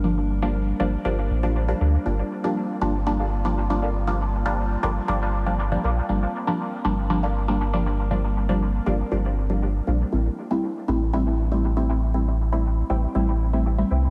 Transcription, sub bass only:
X:1
M:4/4
L:1/8
Q:1/4=119
K:Gdor
V:1 name="Sub bass" clef=bass
G,,,3 G,,, G,,, A,,,2 D,, | G,,, z2 G,,,4- G,,,- | G,,,3 G,,, G,,,3 B,,, | G,,, z2 G,,,4- G,,,- |
G,,,3 G,,, G,,,3 B,,, | A,,, z2 A,,,4- A,,,- | A,,,3 A,,, A,,,3 C,, |]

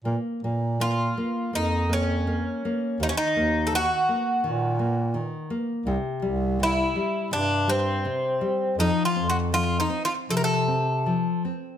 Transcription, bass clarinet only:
X:1
M:4/4
L:1/16
Q:1/4=82
K:Bbm
V:1 name="Bass clarinet" clef=bass
B,, z B,,6 F,,8 | E,, z E,,4 z2 B,,8 | C,, z C,,6 =G,,6 z2 | F,, z F,,6 C,8 |]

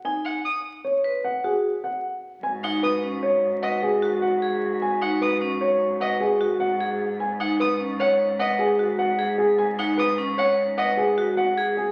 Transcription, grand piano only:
X:1
M:6/4
L:1/8
Q:1/4=151
K:G#m
V:1 name="Grand piano"
g z3 c z f G z f z2 | g z B z c z f G z f z2 | g z B z c z f G z f z2 | g z B z c z f G z f z G |
g z B z c z f G z f z G |]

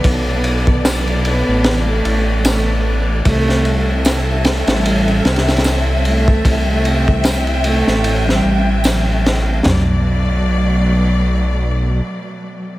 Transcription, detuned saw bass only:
X:1
M:4/4
L:1/16
Q:"Swing 16ths" 1/4=75
K:Bphr
V:1 name="Detuned saw bass" clef=bass
B,,,6- B,,, A,,,3 A,,,6 | C,,6- C,, A,,,3 C,,6 | C,,6- C,, A,,,3 A,,,6 | B,,,12 z4 |]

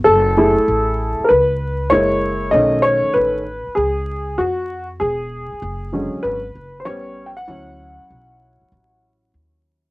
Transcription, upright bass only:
X:1
M:4/4
L:1/16
Q:"Swing 16ths" 1/4=97
K:F#m
V:1 name="Upright bass" clef=bass
F,,,3 z A,,,3 z C,,4 F,,,4 | B,,,3 z A,,,3 z C,,4 ^E,,4 | E,,,3 z F,,,3 z G,,,2 F,,,2 A,,,4 | D,,3 z B,,,3 z A,,,4 ^D,,4 |]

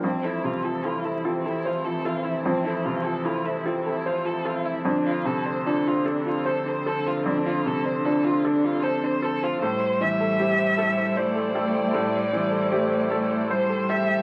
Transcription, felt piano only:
X:1
M:3/4
L:1/8
Q:1/4=76
K:F
V:1 name="Felt piano"
F,, C, E A c A | F,, C, E A c A | F,, C, D A c A | F,, C, D A c A |
A,, E, G A c A | A,, E, G A c A |]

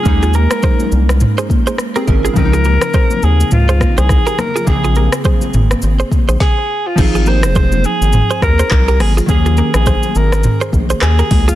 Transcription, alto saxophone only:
X:1
M:4/4
L:1/16
Q:"Swing 16ths" 1/4=104
K:Ab
V:1 name="Alto saxophone"
A2 B4 z8 z2 | B6 A2 F3 A3 B2 | A4 z8 A3 F- | F2 c4 A4 B4 A2 |
A3 A3 B4 z2 A3 F |]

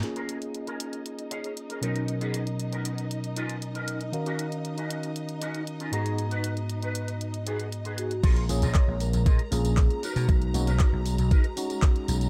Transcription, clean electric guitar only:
X:1
M:4/4
L:1/16
Q:1/4=117
K:Bbphr
V:1 name="Clean electric guitar"
z [DAB] z3 [DAB]3 z2 [DAd]2 z [DAB] [=B,^C^D^A]2 | z [=B,^C^DA] z3 [B,CD^A]3 z2 [B,CDF]2 z [B,CDA]2 z | z [DEG] z3 [DEG]3 z2 [DEG]2 z [DEF] [CGA]2 | z [CGc] z3 [CGc]3 z2 [CGA]2 z [CGA]2 z |
[FABd]2 z [FABe]3 z2 [FABe] z4 z [^D^A=B^c]2- | [^D^A=B^c]2 z [DABc]3 z2 [DAB^d] z6 z |]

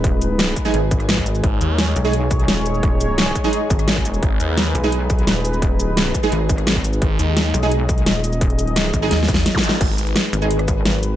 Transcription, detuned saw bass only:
X:1
M:4/4
L:1/8
Q:1/4=172
K:G#m
V:1 name="Detuned saw bass" clef=bass
z8 | G,,, D,,2 z4 z | z8 | G,,, D,,2 z4 z |
z8 | G,,, D,,2 z4 z | z4 D,,2 z2 | G,,,2 z6 |]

